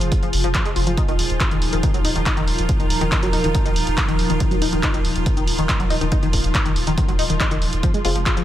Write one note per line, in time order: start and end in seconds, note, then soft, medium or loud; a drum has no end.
0.00 0.12 F1 medium
0.00 7.82 F3 medium
0.00 0.98 F4 medium
0.00 7.82 F4 medium
0.00 2.01 G#4 medium
0.00 1.73 C5 medium
0.00 1.92 G#5 medium
0.00 closed hi-hat soft
0.12 kick loud
0.12 closed hi-hat medium
0.23 0.32 F1 medium
0.23 0.29 F3 medium
0.23 closed hi-hat medium
0.33 0.43 F1 loud
0.33 open hi-hat loud
0.44 0.54 F1 medium
0.44 0.48 F3 loud
0.44 closed hi-hat medium
0.55 0.61 F3 medium
0.55 kick loud
0.55 clap loud
0.55 closed hi-hat medium
0.65 0.75 F1 medium
0.65 0.70 G#3 medium
0.65 closed hi-hat medium
0.76 0.86 F1 loud
0.76 0.80 F4 medium
0.76 open hi-hat loud
0.87 0.97 F1 medium
0.87 0.91 F3 medium
0.87 closed hi-hat medium
0.97 1.02 D#4 medium
0.97 8.44 D#4 medium
0.97 kick loud
0.97 closed hi-hat medium
1.08 1.18 D#1 medium
1.08 1.13 D#3 loud
1.08 closed hi-hat medium
1.19 1.29 D#1 loud
1.19 open hi-hat loud
1.30 1.40 D#1 medium
1.30 8.44 A#4 medium
1.30 closed hi-hat medium
1.40 kick loud
1.40 clap loud
1.40 closed hi-hat medium
1.51 1.61 D#1 medium
1.51 1.58 D#3 medium
1.51 closed hi-hat medium
1.62 1.72 D#1 loud
1.62 open hi-hat medium
1.73 1.83 D#1 medium
1.73 1.77 D#3 loud
1.73 closed hi-hat medium
1.83 1.90 D#3 medium
1.83 kick loud
1.83 closed hi-hat medium
1.94 2.04 D#1 medium
1.94 1.98 F#3 medium
1.94 closed hi-hat medium
2.05 2.15 D#1 loud
2.05 2.09 D#4 medium
2.05 5.07 A#5 medium
2.05 open hi-hat loud
2.16 2.26 D#1 medium
2.16 2.20 D#3 medium
2.16 closed hi-hat medium
2.26 2.30 D#4 medium
2.26 kick loud
2.26 clap loud
2.26 closed hi-hat medium
2.37 2.47 D#1 medium
2.37 2.41 D#3 loud
2.37 closed hi-hat soft
2.47 2.58 D#1 loud
2.47 open hi-hat medium
2.58 2.69 D#1 medium
2.58 closed hi-hat medium
2.69 kick loud
2.69 closed hi-hat medium
2.80 2.90 D#1 medium
2.80 2.86 D#3 medium
2.80 closed hi-hat soft
2.90 3.01 D#1 loud
2.90 open hi-hat loud
3.01 3.12 D#1 medium
3.01 3.05 D#3 loud
3.01 closed hi-hat soft
3.12 3.18 D#3 medium
3.12 kick loud
3.12 clap loud
3.12 closed hi-hat medium
3.23 3.33 D#1 medium
3.23 3.27 F#3 medium
3.23 closed hi-hat medium
3.33 3.44 D#1 loud
3.33 3.37 D#4 medium
3.33 open hi-hat medium
3.44 3.54 D#1 medium
3.44 3.48 D#3 medium
3.44 closed hi-hat soft
3.55 3.59 D#4 medium
3.55 kick loud
3.55 closed hi-hat medium
3.65 3.75 D#1 medium
3.65 3.70 D#3 loud
3.65 closed hi-hat medium
3.76 3.86 D#1 loud
3.76 open hi-hat loud
3.87 3.97 D#1 medium
3.87 closed hi-hat medium
3.98 kick loud
3.98 clap loud
3.98 closed hi-hat medium
4.08 4.18 D#1 medium
4.08 4.15 D#3 medium
4.08 closed hi-hat medium
4.19 4.29 D#1 loud
4.19 open hi-hat medium
4.30 4.40 D#1 medium
4.30 4.34 D#3 loud
4.30 closed hi-hat medium
4.40 4.47 D#3 medium
4.40 kick loud
4.40 closed hi-hat medium
4.51 4.61 D#1 medium
4.51 4.55 F#3 medium
4.51 closed hi-hat medium
4.62 4.72 D#1 loud
4.62 4.66 D#4 medium
4.62 open hi-hat loud
4.73 4.83 D#1 medium
4.73 4.77 D#3 medium
4.73 closed hi-hat medium
4.83 4.88 D#4 medium
4.83 kick loud
4.83 clap loud
4.83 closed hi-hat medium
4.94 5.04 D#1 medium
4.94 4.98 D#3 loud
4.94 8.44 C6 medium
4.94 closed hi-hat medium
5.05 5.15 D#1 loud
5.05 open hi-hat medium
5.16 5.26 D#1 medium
5.16 closed hi-hat soft
5.26 kick loud
5.26 closed hi-hat medium
5.37 5.47 D#1 medium
5.37 5.43 D#3 medium
5.37 closed hi-hat medium
5.48 5.58 D#1 loud
5.48 open hi-hat loud
5.58 5.69 D#1 medium
5.58 5.63 D#3 loud
5.58 closed hi-hat medium
5.69 5.75 D#3 medium
5.69 kick loud
5.69 clap loud
5.69 closed hi-hat medium
5.80 5.90 D#1 medium
5.80 5.84 F#3 medium
5.80 closed hi-hat medium
5.90 6.01 D#1 loud
5.90 5.95 D#4 medium
5.90 open hi-hat medium
6.01 6.12 D#1 medium
6.01 6.05 D#3 medium
6.01 closed hi-hat medium
6.12 6.16 D#4 medium
6.12 kick loud
6.12 closed hi-hat medium
6.23 6.33 D#1 medium
6.23 6.27 D#3 loud
6.23 closed hi-hat medium
6.33 6.44 D#1 loud
6.33 kick medium
6.33 open hi-hat loud
6.44 6.54 D#1 medium
6.44 closed hi-hat medium
6.55 kick loud
6.55 clap loud
6.55 closed hi-hat medium
6.66 6.76 D#1 medium
6.66 6.72 D#3 medium
6.66 closed hi-hat medium
6.76 6.87 D#1 loud
6.76 open hi-hat medium
6.87 6.97 D#1 medium
6.87 6.91 D#3 loud
6.87 closed hi-hat medium
6.97 7.04 D#3 medium
6.97 kick loud
6.97 closed hi-hat loud
7.08 7.18 D#1 medium
7.08 7.12 F#3 medium
7.08 closed hi-hat medium
7.19 7.29 D#1 loud
7.19 7.23 D#4 medium
7.19 open hi-hat loud
7.30 7.40 D#1 medium
7.30 7.34 D#3 medium
7.30 closed hi-hat medium
7.40 7.45 D#4 medium
7.40 kick loud
7.40 clap loud
7.40 closed hi-hat medium
7.51 7.61 D#1 medium
7.51 7.55 D#3 loud
7.51 closed hi-hat medium
7.62 7.72 D#1 loud
7.62 open hi-hat medium
7.73 7.83 D#1 medium
7.73 closed hi-hat medium
7.83 7.90 F3 medium
7.83 8.44 F3 medium
7.83 8.44 C4 medium
7.83 8.44 F4 medium
7.83 kick loud
7.83 closed hi-hat medium
7.94 8.04 F1 medium
7.94 7.98 G#3 medium
7.94 closed hi-hat medium
8.05 8.15 F1 loud
8.05 8.13 G#3 medium
8.05 8.13 C4 medium
8.05 8.09 F4 medium
8.05 8.13 F4 loud
8.05 open hi-hat loud
8.15 8.26 F1 medium
8.15 8.20 F3 medium
8.15 8.44 G#4 medium
8.15 closed hi-hat medium
8.26 8.30 F4 medium
8.26 kick loud
8.26 clap loud
8.26 closed hi-hat loud
8.37 8.44 F1 medium
8.37 8.41 F3 loud
8.37 closed hi-hat medium